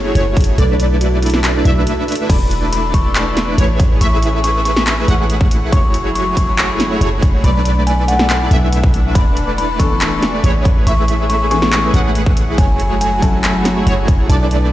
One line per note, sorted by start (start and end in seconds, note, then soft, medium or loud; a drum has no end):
0.00 0.13 F#1 loud
0.00 0.13 A3 medium
0.00 0.13 E4 medium
0.00 0.13 F#4 medium
0.00 0.13 G#4 medium
0.00 0.50 A4 loud
0.00 0.13 C#5 medium
0.15 0.56 F#1 loud
0.15 0.56 A3 medium
0.15 0.56 E4 medium
0.15 0.56 F#4 medium
0.15 0.56 G#4 medium
0.15 0.56 C#5 loud
0.15 closed hi-hat medium
0.37 kick loud
0.37 closed hi-hat soft
0.40 closed hi-hat medium
0.44 closed hi-hat medium
0.58 1.63 B1 loud
0.58 1.63 A3 loud
0.58 1.63 D4 medium
0.58 1.63 E4 medium
0.58 0.87 A4 loud
0.58 1.63 B4 medium
0.58 1.63 D5 loud
0.58 closed hi-hat medium
0.80 closed hi-hat medium
1.01 1.16 F#4 medium
1.01 closed hi-hat medium
1.22 2.21 E4 loud
1.22 closed hi-hat medium
1.26 closed hi-hat medium
1.30 closed hi-hat medium
1.34 snare medium
1.44 clap loud
1.44 closed hi-hat medium
1.65 1.87 B1 loud
1.65 2.27 A3 loud
1.65 2.27 D4 medium
1.65 2.27 E4 medium
1.65 2.27 B4 medium
1.65 2.27 E5 loud
1.65 closed hi-hat medium
1.87 closed hi-hat medium
2.08 closed hi-hat medium
2.08 open hi-hat medium
2.15 closed hi-hat medium
2.30 3.56 E1 loud
2.30 3.78 E3 medium
2.30 3.56 A3 medium
2.30 3.56 D4 medium
2.30 3.78 D4 medium
2.30 3.56 E4 medium
2.30 3.78 A4 medium
2.30 3.56 B4 medium
2.30 3.56 D5 medium
2.30 2.59 B5 loud
2.30 kick loud
2.30 closed hi-hat medium
2.30 crash loud
2.51 closed hi-hat medium
2.73 2.87 B5 medium
2.73 closed hi-hat medium
2.94 3.93 C#6 loud
2.94 kick medium
2.94 closed hi-hat medium
3.15 clap loud
3.15 closed hi-hat medium
3.37 snare medium
3.37 closed hi-hat medium
3.58 3.99 A1 loud
3.58 3.99 A3 medium
3.58 3.99 E4 medium
3.58 3.99 G#4 medium
3.58 3.99 B4 medium
3.58 3.99 C#5 loud
3.58 closed hi-hat medium
3.80 5.71 A3 medium
3.80 5.71 C#4 medium
3.80 5.71 G#4 medium
3.80 kick loud
3.80 closed hi-hat medium
4.01 5.06 A1 loud
4.01 5.06 A3 medium
4.01 5.06 E4 medium
4.01 5.06 G#4 medium
4.01 5.06 B4 medium
4.01 5.06 E5 loud
4.01 4.30 C#6 loud
4.01 closed hi-hat medium
4.23 closed hi-hat medium
4.44 4.59 C#6 medium
4.44 closed hi-hat medium
4.65 5.64 C#6 loud
4.65 closed hi-hat medium
4.76 snare medium
4.87 clap loud
4.87 closed hi-hat medium
5.08 5.74 A1 loud
5.08 5.70 A3 loud
5.08 5.70 E4 medium
5.08 5.70 G#4 medium
5.08 5.70 B4 medium
5.08 5.70 F#5 loud
5.08 closed hi-hat medium
5.30 closed hi-hat medium
5.41 kick loud
5.51 closed hi-hat medium
5.72 6.99 F#1 medium
5.72 7.42 F#3 medium
5.72 6.99 A3 medium
5.72 7.42 A3 medium
5.72 6.99 E4 medium
5.72 7.42 E4 medium
5.72 6.99 F#4 medium
5.72 7.42 G#4 medium
5.72 6.99 C#5 medium
5.72 6.01 C#6 loud
5.72 kick loud
5.72 closed hi-hat medium
5.94 closed hi-hat medium
6.15 6.30 C#6 medium
6.15 closed hi-hat medium
6.37 7.36 C#6 loud
6.37 kick medium
6.37 closed hi-hat medium
6.58 clap loud
6.58 closed hi-hat medium
6.80 snare medium
6.80 closed hi-hat medium
7.01 7.42 F#1 loud
7.01 7.41 A3 medium
7.01 7.41 E4 medium
7.01 7.41 F#4 medium
7.01 7.41 G#4 medium
7.01 7.41 C#5 loud
7.01 closed hi-hat medium
7.22 kick loud
7.22 closed hi-hat medium
7.44 8.49 B1 loud
7.44 8.49 A3 loud
7.44 9.14 A3 medium
7.44 9.14 B3 medium
7.44 10.62 D4 medium
7.44 8.49 D4 medium
7.44 8.49 E4 medium
7.44 8.49 B4 medium
7.44 8.49 D5 loud
7.44 7.73 B5 loud
7.44 closed hi-hat medium
7.65 closed hi-hat medium
7.87 8.01 G#5 medium
7.87 closed hi-hat medium
8.08 9.07 F#5 loud
8.08 closed hi-hat medium
8.19 snare medium
8.30 clap loud
8.30 closed hi-hat medium
8.51 9.17 B1 loud
8.51 9.13 A3 loud
8.51 9.13 D4 medium
8.51 9.13 E4 medium
8.51 9.13 B4 medium
8.51 9.13 E5 loud
8.51 closed hi-hat medium
8.73 closed hi-hat medium
8.84 kick loud
8.94 closed hi-hat medium
9.15 10.42 E1 medium
9.15 10.64 E3 medium
9.15 10.41 A3 medium
9.15 10.41 E4 medium
9.15 10.64 A4 medium
9.15 10.41 D5 medium
9.15 9.44 B5 loud
9.15 kick loud
9.15 closed hi-hat medium
9.37 closed hi-hat medium
9.58 9.73 B5 medium
9.58 closed hi-hat medium
9.79 10.19 E3 medium
9.79 10.20 A3 medium
9.79 10.20 B3 medium
9.79 10.20 D4 medium
9.79 10.20 A4 medium
9.79 10.78 C#6 loud
9.79 kick medium
9.79 closed hi-hat medium
10.01 clap loud
10.01 closed hi-hat medium
10.22 snare medium
10.22 closed hi-hat medium
10.44 10.85 A1 loud
10.44 10.84 A3 medium
10.44 10.84 E4 medium
10.44 10.84 G#4 medium
10.44 10.84 B4 medium
10.44 10.84 C#5 loud
10.44 closed hi-hat medium
10.65 12.56 A3 medium
10.65 12.56 C#4 medium
10.65 12.56 G#4 medium
10.65 kick loud
10.65 closed hi-hat medium
10.87 11.92 A1 loud
10.87 11.91 A3 loud
10.87 11.91 E4 medium
10.87 11.91 G#4 medium
10.87 11.91 B4 medium
10.87 11.91 E5 loud
10.87 11.16 C#6 loud
10.87 closed hi-hat medium
11.08 closed hi-hat medium
11.30 11.44 C#6 medium
11.30 closed hi-hat medium
11.50 11.91 E3 medium
11.50 11.91 A3 medium
11.50 11.91 B3 medium
11.50 11.92 C#4 medium
11.50 11.92 G#4 medium
11.50 12.50 C#6 loud
11.50 closed hi-hat medium
11.62 snare medium
11.72 clap loud
11.72 closed hi-hat medium
11.94 12.56 A1 loud
11.94 12.56 A3 medium
11.94 12.56 E4 medium
11.94 12.56 G#4 medium
11.94 12.56 B4 medium
11.94 12.56 F#5 loud
11.94 closed hi-hat medium
12.15 closed hi-hat medium
12.26 kick loud
12.37 closed hi-hat medium
12.58 13.85 F#1 medium
12.58 14.28 F#3 medium
12.58 13.84 A3 medium
12.58 14.28 A3 medium
12.58 13.84 E4 medium
12.58 14.28 E4 medium
12.58 13.84 F#4 medium
12.58 14.28 F#4 medium
12.58 13.84 G#4 medium
12.58 13.84 C#5 medium
12.58 12.87 G#5 loud
12.58 kick loud
12.58 closed hi-hat medium
12.80 closed hi-hat medium
13.01 13.16 G#5 medium
13.01 closed hi-hat medium
13.22 13.62 F#3 medium
13.22 13.63 A3 medium
13.22 13.63 C#4 medium
13.22 13.63 E4 medium
13.22 13.63 F#4 medium
13.22 14.21 A5 loud
13.22 kick medium
13.22 closed hi-hat medium
13.44 clap loud
13.44 closed hi-hat medium
13.65 snare medium
13.65 closed hi-hat medium
13.87 14.27 F#1 loud
13.87 14.27 A3 medium
13.87 14.27 E4 medium
13.87 14.27 F#4 medium
13.87 14.27 G#4 medium
13.87 14.27 C#5 loud
13.87 closed hi-hat medium
14.08 kick loud
14.08 closed hi-hat medium
14.29 14.72 B1 loud
14.29 14.72 D3 medium
14.29 14.72 A3 medium
14.29 14.72 B3 medium
14.29 14.72 D4 medium
14.29 14.72 E4 medium
14.29 14.72 B4 medium
14.29 14.72 D5 loud
14.29 14.58 A5 loud
14.29 closed hi-hat medium
14.51 closed hi-hat medium